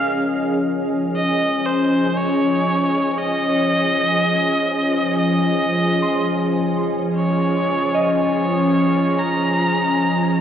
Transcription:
0.00 10.41 F3 medium
0.00 10.41 C#4 medium
0.00 10.41 G#4 medium
0.00 1.49 A#4 medium
0.00 1.90 D#5 soft
0.00 10.41 D#5 medium
0.00 0.63 F5 medium
0.00 10.41 F5 medium
1.16 1.68 D#5 medium
1.66 2.18 C5 medium
2.17 3.20 C#5 medium
3.18 5.17 D#5 medium
3.49 6.17 C#5 soft
5.18 6.63 D#5 medium
6.02 8.71 C6 medium
7.16 8.12 C#5 medium
7.95 10.41 D#5 soft
8.18 9.20 C#5 medium
9.19 10.41 A#5 medium

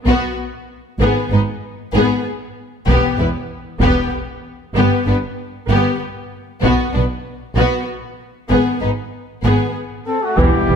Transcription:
0.05 0.14 B1 medium
0.05 0.15 B2 soft
0.05 0.35 B3 medium
0.05 0.36 B3 soft
0.05 0.36 F#4 medium
0.05 taiko soft
1.00 1.08 G#1 medium
1.00 1.09 G#2 medium
1.00 1.29 B3 soft
1.00 1.30 B3 medium
1.00 1.30 G#4 soft
1.31 1.39 G#1 soft
1.31 1.40 G#2 soft
1.31 1.41 B3 soft
1.31 1.40 D#4 soft
1.31 1.40 B4 soft
1.94 2.02 G#1 medium
1.94 2.03 G#2 medium
1.94 2.23 B3 soft
1.94 2.24 B3 soft
1.94 2.23 G#4 medium
2.88 2.96 E1 medium
2.88 2.96 E2 medium
2.88 3.17 B3 medium
2.88 3.17 G4 medium
2.88 taiko soft
3.19 3.27 E1 soft
3.19 3.28 E2 soft
3.19 3.27 B3 soft
3.19 3.27 E4 soft
3.19 3.28 B4 soft
3.81 3.89 E1 medium
3.81 3.90 E2 soft
3.81 4.11 B3 soft
3.81 4.11 B3 medium
3.81 4.11 G4 medium
3.81 taiko soft
4.75 4.83 G1 medium
4.75 4.84 G2 medium
4.75 5.04 B3 medium
4.75 5.05 B3 medium
4.75 5.05 G4 soft
5.07 5.15 G1 soft
5.07 5.15 G2 soft
5.07 5.15 B3 soft
5.07 5.15 D4 soft
5.07 5.16 B4 soft
5.69 5.77 G1 medium
5.69 5.77 G2 soft
5.69 5.98 B3 soft
5.69 5.98 B3 medium
5.69 5.99 G4 medium
6.62 6.70 B1 medium
6.62 6.72 B2 medium
6.62 6.91 B3 medium
6.62 6.92 B3 soft
6.62 6.92 F#4 soft
6.62 taiko soft
6.94 7.02 B1 soft
6.94 7.03 B2 soft
6.94 7.02 B3 soft
6.94 7.02 D4 soft
6.94 7.04 B4 soft
7.55 7.64 B1 medium
7.55 7.65 B2 soft
7.55 7.85 B3 soft
7.55 7.86 B3 soft
7.55 7.86 F#4 medium
8.50 8.59 G#1 soft
8.50 8.59 G#2 medium
8.50 8.79 B3 soft
8.50 8.79 G#4 soft
8.81 8.90 G#1 soft
8.81 8.90 G#2 soft
8.81 8.90 B3 soft
8.81 8.89 D#4 soft
8.81 8.89 B4 soft
9.44 9.52 G#1 soft
9.44 9.53 G#2 soft
9.44 9.73 B3 soft
9.44 9.73 G#4 medium
10.06 10.21 C4 soft
10.06 10.21 A4 soft
10.22 10.38 A3 soft
10.22 10.38 F#4 soft
10.37 10.46 E1 soft
10.37 10.76 E2 soft
10.37 10.46 E2 soft
10.37 10.67 E3 medium
10.37 10.76 G3 soft
10.37 10.76 B3 soft
10.37 10.76 E4 soft
10.37 10.76 G4 medium
10.37 taiko medium
10.37 sub drop soft
10.69 10.76 E1 soft
10.69 10.76 E2 soft
10.69 10.76 E3 soft
10.69 10.76 G3 soft

